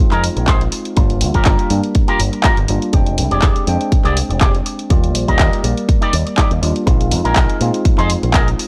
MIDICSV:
0, 0, Header, 1, 7, 480
1, 0, Start_track
1, 0, Tempo, 491803
1, 946, Time_signature, 4, 2, 24, 8
1, 8468, End_track
2, 0, Start_track
2, 0, Title_t, "Clean electric guitar"
2, 0, Program_c, 0, 27
2, 108, Note_on_c, 0, 63, 114
2, 114, Note_on_c, 0, 68, 88
2, 117, Note_on_c, 0, 70, 122
2, 222, Note_off_c, 0, 63, 0
2, 224, Note_off_c, 0, 68, 0
2, 226, Note_off_c, 0, 70, 0
2, 462, Note_on_c, 0, 63, 83
2, 471, Note_on_c, 0, 68, 67
2, 471, Note_on_c, 0, 72, 95
2, 595, Note_off_c, 0, 63, 0
2, 596, Note_off_c, 0, 68, 0
2, 598, Note_off_c, 0, 72, 0
2, 1308, Note_on_c, 0, 65, 83
2, 1313, Note_on_c, 0, 67, 76
2, 1321, Note_on_c, 0, 70, 94
2, 1662, Note_off_c, 0, 65, 0
2, 1664, Note_off_c, 0, 67, 0
2, 1668, Note_off_c, 0, 70, 0
2, 2028, Note_on_c, 0, 65, 110
2, 2032, Note_on_c, 0, 67, 103
2, 2036, Note_on_c, 0, 70, 127
2, 2142, Note_off_c, 0, 65, 0
2, 2144, Note_off_c, 0, 67, 0
2, 2146, Note_off_c, 0, 70, 0
2, 2373, Note_on_c, 0, 65, 85
2, 2381, Note_on_c, 0, 67, 76
2, 2385, Note_on_c, 0, 70, 89
2, 2509, Note_off_c, 0, 65, 0
2, 2513, Note_off_c, 0, 67, 0
2, 2515, Note_off_c, 0, 70, 0
2, 3228, Note_on_c, 0, 67, 80
2, 3232, Note_on_c, 0, 68, 74
2, 3238, Note_on_c, 0, 74, 91
2, 3582, Note_off_c, 0, 67, 0
2, 3584, Note_off_c, 0, 68, 0
2, 3587, Note_off_c, 0, 74, 0
2, 3946, Note_on_c, 0, 67, 110
2, 3950, Note_on_c, 0, 68, 106
2, 3956, Note_on_c, 0, 74, 124
2, 4061, Note_off_c, 0, 67, 0
2, 4063, Note_off_c, 0, 68, 0
2, 4066, Note_off_c, 0, 74, 0
2, 4298, Note_on_c, 0, 67, 85
2, 4304, Note_on_c, 0, 68, 75
2, 4309, Note_on_c, 0, 74, 93
2, 4432, Note_off_c, 0, 67, 0
2, 4435, Note_off_c, 0, 68, 0
2, 4437, Note_off_c, 0, 74, 0
2, 5149, Note_on_c, 0, 63, 81
2, 5155, Note_on_c, 0, 67, 76
2, 5160, Note_on_c, 0, 70, 92
2, 5503, Note_off_c, 0, 63, 0
2, 5505, Note_off_c, 0, 67, 0
2, 5508, Note_off_c, 0, 70, 0
2, 5869, Note_on_c, 0, 63, 112
2, 5873, Note_on_c, 0, 67, 102
2, 5881, Note_on_c, 0, 74, 127
2, 5982, Note_off_c, 0, 63, 0
2, 5984, Note_off_c, 0, 67, 0
2, 5988, Note_off_c, 0, 74, 0
2, 6216, Note_on_c, 0, 63, 87
2, 6221, Note_on_c, 0, 67, 80
2, 6226, Note_on_c, 0, 74, 93
2, 6351, Note_off_c, 0, 63, 0
2, 6353, Note_off_c, 0, 67, 0
2, 6356, Note_off_c, 0, 74, 0
2, 7067, Note_on_c, 0, 63, 82
2, 7073, Note_on_c, 0, 68, 74
2, 7078, Note_on_c, 0, 70, 91
2, 7422, Note_off_c, 0, 63, 0
2, 7424, Note_off_c, 0, 68, 0
2, 7427, Note_off_c, 0, 70, 0
2, 7783, Note_on_c, 0, 63, 113
2, 7790, Note_on_c, 0, 68, 104
2, 7795, Note_on_c, 0, 72, 125
2, 7900, Note_off_c, 0, 63, 0
2, 7903, Note_off_c, 0, 68, 0
2, 7905, Note_off_c, 0, 72, 0
2, 8134, Note_on_c, 0, 63, 82
2, 8139, Note_on_c, 0, 68, 76
2, 8145, Note_on_c, 0, 70, 93
2, 8270, Note_off_c, 0, 63, 0
2, 8272, Note_off_c, 0, 68, 0
2, 8275, Note_off_c, 0, 70, 0
2, 8468, End_track
3, 0, Start_track
3, 0, Title_t, "Tine electric piano"
3, 0, Program_c, 1, 4
3, 0, Note_on_c, 1, 56, 88
3, 0, Note_on_c, 1, 60, 79
3, 0, Note_on_c, 1, 63, 80
3, 0, Note_on_c, 1, 65, 91
3, 917, Note_off_c, 1, 56, 0
3, 921, Note_off_c, 1, 60, 0
3, 924, Note_off_c, 1, 63, 0
3, 928, Note_off_c, 1, 65, 0
3, 943, Note_on_c, 1, 55, 85
3, 949, Note_on_c, 1, 58, 77
3, 955, Note_on_c, 1, 62, 77
3, 962, Note_on_c, 1, 65, 94
3, 1638, Note_off_c, 1, 55, 0
3, 1641, Note_off_c, 1, 58, 0
3, 1644, Note_off_c, 1, 62, 0
3, 1647, Note_off_c, 1, 65, 0
3, 1662, Note_on_c, 1, 55, 70
3, 1668, Note_on_c, 1, 58, 65
3, 1673, Note_on_c, 1, 62, 67
3, 1681, Note_on_c, 1, 70, 81
3, 2598, Note_off_c, 1, 55, 0
3, 2600, Note_off_c, 1, 58, 0
3, 2603, Note_off_c, 1, 62, 0
3, 2607, Note_off_c, 1, 70, 0
3, 2625, Note_on_c, 1, 55, 72
3, 2629, Note_on_c, 1, 58, 66
3, 2634, Note_on_c, 1, 62, 67
3, 2636, Note_on_c, 1, 65, 80
3, 2839, Note_off_c, 1, 55, 0
3, 2841, Note_off_c, 1, 58, 0
3, 2843, Note_off_c, 1, 62, 0
3, 2844, Note_off_c, 1, 65, 0
3, 2861, Note_on_c, 1, 56, 81
3, 2868, Note_on_c, 1, 60, 77
3, 2873, Note_on_c, 1, 62, 76
3, 2880, Note_on_c, 1, 79, 92
3, 3557, Note_off_c, 1, 56, 0
3, 3560, Note_off_c, 1, 60, 0
3, 3563, Note_off_c, 1, 62, 0
3, 3566, Note_off_c, 1, 79, 0
3, 3581, Note_on_c, 1, 56, 86
3, 3587, Note_on_c, 1, 60, 77
3, 3592, Note_on_c, 1, 62, 78
3, 3600, Note_on_c, 1, 79, 93
3, 4757, Note_off_c, 1, 56, 0
3, 4760, Note_off_c, 1, 60, 0
3, 4762, Note_off_c, 1, 62, 0
3, 4766, Note_off_c, 1, 79, 0
3, 4780, Note_on_c, 1, 55, 86
3, 4786, Note_on_c, 1, 58, 76
3, 4793, Note_on_c, 1, 74, 78
3, 4798, Note_on_c, 1, 65, 95
3, 5477, Note_off_c, 1, 55, 0
3, 5480, Note_off_c, 1, 58, 0
3, 5483, Note_off_c, 1, 74, 0
3, 5485, Note_off_c, 1, 65, 0
3, 5498, Note_on_c, 1, 55, 74
3, 5504, Note_on_c, 1, 58, 68
3, 5513, Note_on_c, 1, 74, 65
3, 5518, Note_on_c, 1, 70, 81
3, 6436, Note_off_c, 1, 55, 0
3, 6439, Note_off_c, 1, 58, 0
3, 6443, Note_off_c, 1, 74, 0
3, 6445, Note_off_c, 1, 70, 0
3, 6464, Note_on_c, 1, 55, 71
3, 6469, Note_on_c, 1, 58, 67
3, 6472, Note_on_c, 1, 62, 70
3, 6474, Note_on_c, 1, 65, 84
3, 6679, Note_off_c, 1, 55, 0
3, 6681, Note_off_c, 1, 58, 0
3, 6682, Note_off_c, 1, 62, 0
3, 6684, Note_off_c, 1, 65, 0
3, 6697, Note_on_c, 1, 56, 80
3, 6704, Note_on_c, 1, 60, 75
3, 6711, Note_on_c, 1, 63, 77
3, 6718, Note_on_c, 1, 65, 91
3, 7395, Note_off_c, 1, 56, 0
3, 7398, Note_off_c, 1, 60, 0
3, 7402, Note_off_c, 1, 63, 0
3, 7406, Note_off_c, 1, 65, 0
3, 7418, Note_on_c, 1, 56, 85
3, 7424, Note_on_c, 1, 60, 78
3, 7430, Note_on_c, 1, 63, 76
3, 7438, Note_on_c, 1, 65, 91
3, 8468, Note_off_c, 1, 56, 0
3, 8468, Note_off_c, 1, 60, 0
3, 8468, Note_off_c, 1, 63, 0
3, 8468, Note_off_c, 1, 65, 0
3, 8468, End_track
4, 0, Start_track
4, 0, Title_t, "Picked electric bass"
4, 0, Program_c, 2, 34
4, 118, Note_on_c, 2, 41, 86
4, 270, Note_off_c, 2, 41, 0
4, 358, Note_on_c, 2, 34, 90
4, 648, Note_off_c, 2, 34, 0
4, 946, Note_on_c, 2, 31, 98
4, 1185, Note_on_c, 2, 38, 88
4, 1199, Note_off_c, 2, 31, 0
4, 1272, Note_off_c, 2, 38, 0
4, 1315, Note_on_c, 2, 31, 90
4, 1389, Note_off_c, 2, 31, 0
4, 1426, Note_on_c, 2, 31, 95
4, 1513, Note_off_c, 2, 31, 0
4, 1664, Note_on_c, 2, 43, 93
4, 1751, Note_off_c, 2, 43, 0
4, 2143, Note_on_c, 2, 31, 84
4, 2231, Note_off_c, 2, 31, 0
4, 2512, Note_on_c, 2, 31, 77
4, 2587, Note_off_c, 2, 31, 0
4, 2624, Note_on_c, 2, 31, 88
4, 2711, Note_off_c, 2, 31, 0
4, 2864, Note_on_c, 2, 29, 95
4, 3103, Note_on_c, 2, 36, 84
4, 3117, Note_off_c, 2, 29, 0
4, 3191, Note_off_c, 2, 36, 0
4, 3233, Note_on_c, 2, 29, 92
4, 3308, Note_off_c, 2, 29, 0
4, 3346, Note_on_c, 2, 29, 92
4, 3432, Note_off_c, 2, 29, 0
4, 3584, Note_on_c, 2, 41, 92
4, 3671, Note_off_c, 2, 41, 0
4, 3953, Note_on_c, 2, 36, 85
4, 4108, Note_off_c, 2, 36, 0
4, 4193, Note_on_c, 2, 29, 92
4, 4486, Note_off_c, 2, 29, 0
4, 4785, Note_on_c, 2, 39, 95
4, 5025, Note_off_c, 2, 39, 0
4, 5025, Note_on_c, 2, 34, 88
4, 5112, Note_off_c, 2, 34, 0
4, 5156, Note_on_c, 2, 39, 92
4, 5229, Note_off_c, 2, 39, 0
4, 5266, Note_on_c, 2, 39, 94
4, 5352, Note_off_c, 2, 39, 0
4, 5501, Note_on_c, 2, 34, 92
4, 5590, Note_off_c, 2, 34, 0
4, 5985, Note_on_c, 2, 39, 85
4, 6072, Note_off_c, 2, 39, 0
4, 6354, Note_on_c, 2, 39, 82
4, 6428, Note_off_c, 2, 39, 0
4, 6464, Note_on_c, 2, 39, 91
4, 6551, Note_off_c, 2, 39, 0
4, 6705, Note_on_c, 2, 34, 98
4, 6945, Note_on_c, 2, 41, 88
4, 6960, Note_off_c, 2, 34, 0
4, 7032, Note_off_c, 2, 41, 0
4, 7075, Note_on_c, 2, 34, 94
4, 7149, Note_off_c, 2, 34, 0
4, 7184, Note_on_c, 2, 34, 96
4, 7271, Note_off_c, 2, 34, 0
4, 7425, Note_on_c, 2, 46, 92
4, 7512, Note_off_c, 2, 46, 0
4, 7793, Note_on_c, 2, 41, 85
4, 7948, Note_off_c, 2, 41, 0
4, 8033, Note_on_c, 2, 34, 92
4, 8326, Note_off_c, 2, 34, 0
4, 8468, End_track
5, 0, Start_track
5, 0, Title_t, "Muted clean electric guitar strokes"
5, 351, Note_on_c, 9, 29, 31
5, 449, Note_off_c, 9, 29, 0
5, 700, Note_on_c, 9, 29, 33
5, 797, Note_off_c, 9, 29, 0
5, 937, Note_on_c, 9, 29, 107
5, 1034, Note_off_c, 9, 29, 0
5, 1068, Note_on_c, 9, 29, 33
5, 1166, Note_off_c, 9, 29, 0
5, 1177, Note_on_c, 9, 29, 31
5, 1275, Note_off_c, 9, 29, 0
5, 2267, Note_on_c, 9, 29, 31
5, 2365, Note_off_c, 9, 29, 0
5, 2616, Note_on_c, 9, 29, 32
5, 2714, Note_off_c, 9, 29, 0
5, 2855, Note_on_c, 9, 29, 107
5, 2953, Note_off_c, 9, 29, 0
5, 2988, Note_on_c, 9, 29, 32
5, 3085, Note_off_c, 9, 29, 0
5, 3097, Note_on_c, 9, 29, 31
5, 3195, Note_off_c, 9, 29, 0
5, 4193, Note_on_c, 9, 29, 30
5, 4290, Note_off_c, 9, 29, 0
5, 4541, Note_on_c, 9, 29, 31
5, 4638, Note_off_c, 9, 29, 0
5, 4778, Note_on_c, 9, 29, 110
5, 4876, Note_off_c, 9, 29, 0
5, 4906, Note_on_c, 9, 29, 33
5, 5004, Note_off_c, 9, 29, 0
5, 5016, Note_on_c, 9, 29, 31
5, 5114, Note_off_c, 9, 29, 0
5, 6107, Note_on_c, 9, 29, 32
5, 6205, Note_off_c, 9, 29, 0
5, 6456, Note_on_c, 9, 29, 33
5, 6554, Note_off_c, 9, 29, 0
5, 6694, Note_on_c, 9, 29, 110
5, 6792, Note_off_c, 9, 29, 0
5, 6827, Note_on_c, 9, 29, 34
5, 6924, Note_off_c, 9, 29, 0
5, 6941, Note_on_c, 9, 29, 31
5, 7038, Note_off_c, 9, 29, 0
5, 8026, Note_on_c, 9, 29, 31
5, 8124, Note_off_c, 9, 29, 0
5, 8376, Note_on_c, 9, 29, 32
5, 8468, Note_off_c, 9, 29, 0
5, 8468, End_track
6, 0, Start_track
6, 0, Title_t, "Muted picked electric bass strokes"
6, 3824, Note_on_c, 9, 29, 41
6, 3922, Note_off_c, 9, 29, 0
6, 7662, Note_on_c, 9, 29, 41
6, 7760, Note_off_c, 9, 29, 0
6, 8468, End_track
7, 0, Start_track
7, 0, Title_t, "Drums"
7, 113, Note_on_c, 9, 39, 36
7, 118, Note_on_c, 9, 42, 36
7, 211, Note_off_c, 9, 39, 0
7, 216, Note_off_c, 9, 42, 0
7, 231, Note_on_c, 9, 46, 104
7, 328, Note_off_c, 9, 46, 0
7, 358, Note_on_c, 9, 42, 36
7, 456, Note_off_c, 9, 42, 0
7, 464, Note_on_c, 9, 39, 115
7, 467, Note_on_c, 9, 36, 118
7, 469, Note_on_c, 9, 42, 61
7, 562, Note_off_c, 9, 39, 0
7, 565, Note_off_c, 9, 36, 0
7, 567, Note_off_c, 9, 42, 0
7, 597, Note_on_c, 9, 42, 38
7, 695, Note_off_c, 9, 42, 0
7, 703, Note_on_c, 9, 46, 94
7, 800, Note_off_c, 9, 46, 0
7, 833, Note_on_c, 9, 42, 38
7, 930, Note_off_c, 9, 42, 0
7, 943, Note_on_c, 9, 42, 63
7, 946, Note_on_c, 9, 36, 116
7, 1041, Note_off_c, 9, 42, 0
7, 1044, Note_off_c, 9, 36, 0
7, 1073, Note_on_c, 9, 42, 38
7, 1171, Note_off_c, 9, 42, 0
7, 1180, Note_on_c, 9, 46, 106
7, 1278, Note_off_c, 9, 46, 0
7, 1311, Note_on_c, 9, 42, 35
7, 1315, Note_on_c, 9, 36, 61
7, 1408, Note_off_c, 9, 42, 0
7, 1413, Note_off_c, 9, 36, 0
7, 1417, Note_on_c, 9, 39, 115
7, 1422, Note_on_c, 9, 42, 61
7, 1425, Note_on_c, 9, 36, 120
7, 1514, Note_off_c, 9, 39, 0
7, 1519, Note_off_c, 9, 42, 0
7, 1523, Note_off_c, 9, 36, 0
7, 1552, Note_on_c, 9, 42, 36
7, 1649, Note_off_c, 9, 42, 0
7, 1661, Note_on_c, 9, 46, 91
7, 1758, Note_off_c, 9, 46, 0
7, 1791, Note_on_c, 9, 42, 36
7, 1889, Note_off_c, 9, 42, 0
7, 1901, Note_on_c, 9, 42, 61
7, 1905, Note_on_c, 9, 36, 116
7, 1999, Note_off_c, 9, 42, 0
7, 2002, Note_off_c, 9, 36, 0
7, 2031, Note_on_c, 9, 42, 36
7, 2128, Note_off_c, 9, 42, 0
7, 2144, Note_on_c, 9, 46, 104
7, 2241, Note_off_c, 9, 46, 0
7, 2274, Note_on_c, 9, 42, 36
7, 2372, Note_off_c, 9, 42, 0
7, 2377, Note_on_c, 9, 39, 114
7, 2382, Note_on_c, 9, 42, 60
7, 2384, Note_on_c, 9, 36, 117
7, 2475, Note_off_c, 9, 39, 0
7, 2480, Note_off_c, 9, 42, 0
7, 2482, Note_off_c, 9, 36, 0
7, 2511, Note_on_c, 9, 42, 35
7, 2609, Note_off_c, 9, 42, 0
7, 2619, Note_on_c, 9, 46, 93
7, 2716, Note_off_c, 9, 46, 0
7, 2754, Note_on_c, 9, 42, 37
7, 2852, Note_off_c, 9, 42, 0
7, 2860, Note_on_c, 9, 42, 63
7, 2864, Note_on_c, 9, 36, 109
7, 2958, Note_off_c, 9, 42, 0
7, 2961, Note_off_c, 9, 36, 0
7, 2991, Note_on_c, 9, 42, 37
7, 3089, Note_off_c, 9, 42, 0
7, 3103, Note_on_c, 9, 46, 104
7, 3200, Note_off_c, 9, 46, 0
7, 3233, Note_on_c, 9, 42, 35
7, 3331, Note_off_c, 9, 42, 0
7, 3338, Note_on_c, 9, 39, 112
7, 3343, Note_on_c, 9, 42, 62
7, 3344, Note_on_c, 9, 36, 118
7, 3435, Note_off_c, 9, 39, 0
7, 3440, Note_off_c, 9, 42, 0
7, 3442, Note_off_c, 9, 36, 0
7, 3473, Note_on_c, 9, 42, 38
7, 3570, Note_off_c, 9, 42, 0
7, 3584, Note_on_c, 9, 46, 87
7, 3682, Note_off_c, 9, 46, 0
7, 3716, Note_on_c, 9, 42, 36
7, 3813, Note_off_c, 9, 42, 0
7, 3825, Note_on_c, 9, 36, 119
7, 3827, Note_on_c, 9, 42, 61
7, 3923, Note_off_c, 9, 36, 0
7, 3924, Note_off_c, 9, 42, 0
7, 3951, Note_on_c, 9, 39, 34
7, 3956, Note_on_c, 9, 42, 36
7, 4049, Note_off_c, 9, 39, 0
7, 4054, Note_off_c, 9, 42, 0
7, 4068, Note_on_c, 9, 46, 101
7, 4165, Note_off_c, 9, 46, 0
7, 4202, Note_on_c, 9, 42, 36
7, 4299, Note_off_c, 9, 42, 0
7, 4304, Note_on_c, 9, 39, 109
7, 4305, Note_on_c, 9, 36, 113
7, 4309, Note_on_c, 9, 42, 60
7, 4401, Note_off_c, 9, 39, 0
7, 4403, Note_off_c, 9, 36, 0
7, 4406, Note_off_c, 9, 42, 0
7, 4437, Note_on_c, 9, 42, 36
7, 4535, Note_off_c, 9, 42, 0
7, 4547, Note_on_c, 9, 46, 89
7, 4645, Note_off_c, 9, 46, 0
7, 4676, Note_on_c, 9, 42, 36
7, 4773, Note_off_c, 9, 42, 0
7, 4785, Note_on_c, 9, 42, 66
7, 4786, Note_on_c, 9, 36, 111
7, 4882, Note_off_c, 9, 42, 0
7, 4883, Note_off_c, 9, 36, 0
7, 4915, Note_on_c, 9, 42, 38
7, 5013, Note_off_c, 9, 42, 0
7, 5025, Note_on_c, 9, 46, 101
7, 5123, Note_off_c, 9, 46, 0
7, 5156, Note_on_c, 9, 36, 56
7, 5157, Note_on_c, 9, 42, 37
7, 5254, Note_off_c, 9, 36, 0
7, 5255, Note_off_c, 9, 42, 0
7, 5263, Note_on_c, 9, 39, 113
7, 5266, Note_on_c, 9, 36, 113
7, 5268, Note_on_c, 9, 42, 64
7, 5361, Note_off_c, 9, 39, 0
7, 5363, Note_off_c, 9, 36, 0
7, 5366, Note_off_c, 9, 42, 0
7, 5400, Note_on_c, 9, 42, 39
7, 5497, Note_off_c, 9, 42, 0
7, 5505, Note_on_c, 9, 46, 87
7, 5603, Note_off_c, 9, 46, 0
7, 5636, Note_on_c, 9, 42, 37
7, 5734, Note_off_c, 9, 42, 0
7, 5745, Note_on_c, 9, 36, 110
7, 5747, Note_on_c, 9, 42, 65
7, 5843, Note_off_c, 9, 36, 0
7, 5844, Note_off_c, 9, 42, 0
7, 5875, Note_on_c, 9, 42, 38
7, 5973, Note_off_c, 9, 42, 0
7, 5984, Note_on_c, 9, 46, 101
7, 6081, Note_off_c, 9, 46, 0
7, 6116, Note_on_c, 9, 42, 38
7, 6214, Note_off_c, 9, 42, 0
7, 6223, Note_on_c, 9, 39, 110
7, 6225, Note_on_c, 9, 36, 113
7, 6228, Note_on_c, 9, 42, 64
7, 6320, Note_off_c, 9, 39, 0
7, 6323, Note_off_c, 9, 36, 0
7, 6325, Note_off_c, 9, 42, 0
7, 6355, Note_on_c, 9, 42, 37
7, 6452, Note_off_c, 9, 42, 0
7, 6469, Note_on_c, 9, 46, 87
7, 6567, Note_off_c, 9, 46, 0
7, 6596, Note_on_c, 9, 42, 38
7, 6694, Note_off_c, 9, 42, 0
7, 6705, Note_on_c, 9, 36, 110
7, 6711, Note_on_c, 9, 42, 68
7, 6802, Note_off_c, 9, 36, 0
7, 6809, Note_off_c, 9, 42, 0
7, 6838, Note_on_c, 9, 42, 40
7, 6936, Note_off_c, 9, 42, 0
7, 6944, Note_on_c, 9, 46, 99
7, 7042, Note_off_c, 9, 46, 0
7, 7077, Note_on_c, 9, 42, 37
7, 7175, Note_off_c, 9, 42, 0
7, 7182, Note_on_c, 9, 39, 114
7, 7184, Note_on_c, 9, 36, 107
7, 7187, Note_on_c, 9, 42, 68
7, 7280, Note_off_c, 9, 39, 0
7, 7281, Note_off_c, 9, 36, 0
7, 7285, Note_off_c, 9, 42, 0
7, 7316, Note_on_c, 9, 42, 40
7, 7413, Note_off_c, 9, 42, 0
7, 7425, Note_on_c, 9, 46, 85
7, 7522, Note_off_c, 9, 46, 0
7, 7556, Note_on_c, 9, 42, 39
7, 7654, Note_off_c, 9, 42, 0
7, 7663, Note_on_c, 9, 36, 112
7, 7663, Note_on_c, 9, 42, 68
7, 7761, Note_off_c, 9, 36, 0
7, 7761, Note_off_c, 9, 42, 0
7, 7791, Note_on_c, 9, 39, 34
7, 7796, Note_on_c, 9, 42, 39
7, 7888, Note_off_c, 9, 39, 0
7, 7893, Note_off_c, 9, 42, 0
7, 7903, Note_on_c, 9, 46, 97
7, 8000, Note_off_c, 9, 46, 0
7, 8035, Note_on_c, 9, 42, 39
7, 8132, Note_off_c, 9, 42, 0
7, 8138, Note_on_c, 9, 39, 113
7, 8143, Note_on_c, 9, 36, 114
7, 8143, Note_on_c, 9, 42, 64
7, 8235, Note_off_c, 9, 39, 0
7, 8240, Note_off_c, 9, 36, 0
7, 8240, Note_off_c, 9, 42, 0
7, 8277, Note_on_c, 9, 42, 39
7, 8374, Note_off_c, 9, 42, 0
7, 8387, Note_on_c, 9, 46, 85
7, 8468, Note_off_c, 9, 46, 0
7, 8468, End_track
0, 0, End_of_file